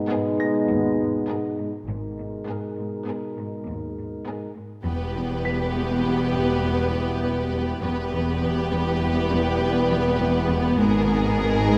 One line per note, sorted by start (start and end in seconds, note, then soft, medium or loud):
0.00 1.71 B2 medium
0.00 1.71 G#3 medium
0.00 1.71 B3 medium
0.00 1.71 D#4 medium
0.09 0.29 G#2 soft
0.09 0.54 B3 medium
0.09 0.55 G#4 medium
0.09 0.54 A#4 medium
0.40 0.58 G#2 medium
0.40 2.14 A#6 soft
0.69 1.17 D#2 medium
0.69 0.88 G#2 soft
1.00 1.18 G#2 soft
1.28 1.48 G#2 soft
1.28 1.73 B3 soft
1.28 1.74 G#4 soft
1.28 1.73 A#4 soft
1.60 1.77 G#2 soft
1.88 2.35 G#1 soft
1.88 2.35 G#2 soft
1.88 2.07 G#2 soft
1.88 4.52 B2 soft
1.88 4.52 G#3 soft
1.88 4.52 D#4 soft
1.88 4.52 A#4 soft
2.19 2.36 G#2 soft
2.47 2.66 G#2 soft
2.47 2.92 B3 soft
2.47 2.92 G#4 soft
2.47 2.92 A#4 soft
2.79 2.96 G#2 soft
3.07 3.26 G#2 soft
3.07 3.51 B3 soft
3.07 3.52 G#4 soft
3.07 3.52 A#4 soft
3.38 3.56 G#2 soft
3.66 4.13 D#2 soft
3.66 4.14 D#2 soft
3.66 3.86 G#2 soft
3.98 4.16 G#2 soft
4.26 4.44 G#2 soft
4.26 4.71 B3 soft
4.26 4.70 G#4 soft
4.26 4.71 A#4 soft
4.56 4.74 G#2 soft
4.85 7.79 E1 soft
4.85 7.78 E2 soft
4.85 5.03 E2 medium
4.85 7.78 B2 medium
4.85 7.78 G3 soft
4.85 7.78 B3 soft
4.85 7.79 B3 soft
4.85 7.79 E4 soft
4.85 7.79 G4 soft
4.85 7.79 B4 soft
5.15 5.33 E2 soft
5.44 5.62 E2 soft
5.44 7.19 B6 soft
5.74 5.92 E2 soft
6.05 6.22 E2 soft
6.34 6.52 E2 medium
6.64 6.82 E2 soft
6.94 7.11 E2 soft
7.22 7.40 E2 soft
7.53 7.71 E2 soft
7.81 10.75 E1 medium
7.81 8.00 E2 medium
7.81 10.76 E2 medium
7.81 11.78 B2 medium
7.81 10.77 G3 medium
7.81 11.78 B3 medium
7.81 10.76 B3 medium
7.81 10.75 E4 medium
7.81 10.76 G4 soft
7.81 10.76 B4 soft
8.12 8.30 E2 soft
8.42 8.60 E2 soft
8.71 8.89 E2 soft
9.01 9.19 E2 soft
9.31 9.49 E2 medium
9.60 9.78 E2 medium
9.90 10.08 E2 medium
10.19 10.37 E2 medium
10.49 10.67 E2 medium
10.78 11.78 G#1 medium
10.78 11.78 G#2 medium
10.78 10.97 G#2 medium
10.78 11.78 G#3 medium
10.78 11.78 D#4 medium
10.78 11.78 G#4 medium
10.78 11.78 A#4 medium
11.09 11.27 G#2 medium
11.39 11.57 G#2 medium
11.68 11.78 G#2 medium